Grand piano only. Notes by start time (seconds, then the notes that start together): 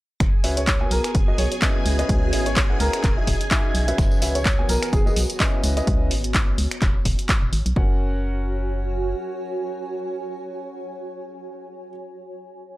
0.57 C#5
0.91 A#4
1.05 A#4
1.38 C#5
1.52 C#5
2.46 C#5
2.80 A#4
4.35 C#5
4.69 A#4
4.82 A#4
4.93 G#4
5.06 G#4